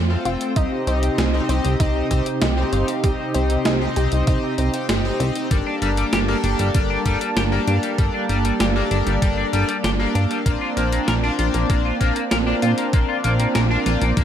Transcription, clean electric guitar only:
5.51 5.56 G3 medium
5.67 5.74 D4 medium
5.82 5.90 G3 loud
5.98 6.05 G3 medium
6.13 6.18 G4 medium
6.28 6.36 A#3 loud
6.44 6.49 D4 medium
6.60 6.67 G3 medium
6.75 6.79 G3 medium
6.90 6.98 D4 medium
7.06 7.17 G3 loud
7.21 7.29 G3 medium
7.37 7.41 G4 medium
7.52 7.60 A#3 loud
7.68 7.75 D4 medium
7.83 7.91 G3 medium
7.98 8.03 G3 medium
8.14 8.22 D4 medium
8.29 8.37 G3 medium
8.45 8.53 G3 medium
8.61 8.65 G4 medium
8.76 8.84 A#3 loud
8.91 8.96 D4 medium
9.07 9.14 G3 medium
9.22 9.27 G3 medium
9.38 9.45 D4 medium
9.53 9.65 G3 loud
9.68 9.76 G3 medium
9.84 9.89 G4 medium
10.00 10.07 A#3 loud
10.15 10.23 D4 medium
10.31 10.38 G3 medium
10.46 10.51 A#3 medium
10.61 10.69 F4 medium
10.77 10.85 A#3 medium
10.92 11.00 A#3 medium
11.08 11.13 A#4 medium
11.23 11.31 D4 loud
11.39 11.43 F4 medium
11.54 11.62 A#3 medium
11.70 11.74 A#3 medium
11.85 11.93 F4 medium
12.01 12.12 A#3 loud
12.16 12.24 A#3 medium
12.31 12.36 A#4 medium
12.47 12.55 D4 loud
12.62 12.70 F4 medium
12.78 12.86 A#3 medium
12.93 12.98 A#3 medium
13.09 13.16 F4 medium
13.24 13.32 A#3 loud
13.40 13.47 A#3 medium
13.55 13.60 A#4 medium
13.70 13.78 D4 loud
13.86 13.91 F4 medium
14.02 14.09 A#3 medium
14.17 14.22 A#3 medium

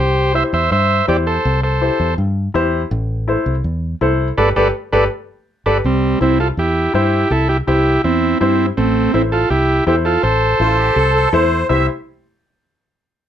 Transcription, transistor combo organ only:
0.00 0.33 G4 medium
0.00 0.34 C5 loud
0.35 0.44 C5 medium
0.35 0.43 E5 loud
0.54 0.70 C5 medium
0.54 0.70 E5 loud
0.72 1.06 C5 medium
0.72 1.06 E5 loud
1.09 1.17 G4 medium
1.09 1.17 D5 medium
1.27 1.61 A4 medium
1.27 1.61 C5 medium
1.64 2.14 A4 medium
1.64 2.14 C5 medium
4.38 4.49 A4 medium
4.38 4.49 B4 loud
4.38 4.49 D5 loud
4.56 4.68 A4 medium
4.56 4.68 B4 medium
4.56 4.68 D5 medium
4.93 5.04 A4 loud
4.93 5.04 B4 medium
4.93 5.04 D5 medium
5.66 5.78 A4 medium
5.66 5.78 B4 medium
5.66 5.78 D5 medium
5.86 6.19 G3 medium
5.86 6.19 C4 medium
6.22 6.39 C4 medium
6.22 6.39 E4 medium
6.40 6.48 F4 medium
6.40 6.48 A4 medium
6.59 6.93 E4 medium
6.59 6.94 G4 medium
6.95 7.29 E4 medium
6.95 7.32 G4 medium
7.31 7.48 E4 medium
7.31 7.48 A4 loud
7.49 7.58 E4 medium
7.49 7.57 G4 medium
7.68 8.02 E4 medium
7.68 8.02 G4 medium
8.04 8.38 C4 medium
8.04 8.38 E4 medium
8.41 8.66 C4 medium
8.41 8.66 E4 medium
8.77 9.12 A3 medium
8.77 9.13 C4 medium
9.14 9.23 C4 medium
9.14 9.22 E4 loud
9.32 9.50 F4 medium
9.32 9.49 A4 medium
9.50 9.85 E4 medium
9.50 9.84 G4 loud
9.87 9.96 E4 medium
9.87 9.95 G4 medium
10.05 10.23 F4 medium
10.05 10.22 A4 medium
10.23 11.29 A4 medium
10.23 11.29 C5 loud
11.69 11.87 E5 medium

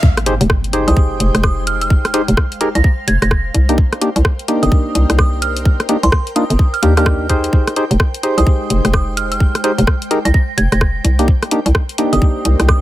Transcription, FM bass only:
0.41 0.47 F1 loud
0.88 0.94 C2 medium
1.20 1.31 F1 medium
1.35 1.99 F1 medium
2.28 2.35 F1 loud
2.75 2.82 C2 loud
3.08 3.18 F1 medium
3.22 3.51 F1 medium
3.54 3.86 C2 medium
4.16 4.22 C2 loud
4.63 4.69 G1 loud
4.95 5.06 C2 medium
5.10 5.74 C2 medium
6.03 6.10 C2 loud
6.50 6.57 G1 loud
6.82 7.49 D#2 medium
7.91 7.97 F1 loud
8.38 8.44 C2 loud
8.70 8.81 F1 medium
8.85 9.49 F1 medium
9.78 9.85 F1 loud
10.25 10.32 C2 loud
10.58 10.68 F1 medium
10.72 11.01 F1 medium
11.04 11.36 C2 medium
11.66 11.72 C2 loud
12.13 12.19 G1 medium
12.45 12.56 C2 medium
12.60 12.81 C2 medium

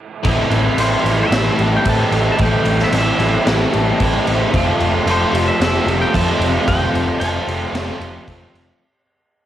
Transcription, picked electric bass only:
0.25 0.42 A1 medium
0.50 0.68 A1 medium
0.76 0.94 A1 medium
1.04 1.22 A1 medium
1.31 1.48 A1 medium
1.59 1.76 A1 medium
1.86 2.03 A2 medium
2.11 2.29 A1 medium
2.40 2.57 A1 medium
2.65 2.83 A1 medium
2.92 3.10 A1 medium
3.19 3.36 A1 medium
3.46 3.64 A1 medium
3.74 3.91 A1 medium
4.00 4.17 A1 medium
4.27 4.44 A1 medium
4.54 4.71 F1 medium
4.80 4.97 F1 medium
5.06 5.23 F1 medium
5.33 5.50 F1 medium
5.60 5.77 F1 medium
5.86 6.04 F1 medium
6.14 6.31 F2 medium
6.39 6.57 F1 medium
6.68 6.85 F1 medium
6.93 7.10 F1 medium
7.20 7.38 F1 medium
7.47 7.64 F1 medium
7.72 7.90 F1 medium
8.00 8.18 F1 medium
8.28 8.45 F1 medium
8.53 8.71 F1 medium

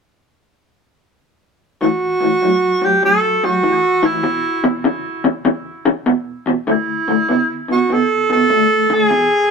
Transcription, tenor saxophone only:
1.82 2.86 F#4 medium
2.85 3.04 G4 medium
3.05 3.46 A4 medium
3.45 4.07 F#4 loud
4.06 4.86 E4 medium
6.70 7.66 E4 medium
7.72 7.95 F#4 medium
7.93 8.31 A4 medium
8.32 8.95 A4 loud
8.94 9.51 G#4 loud

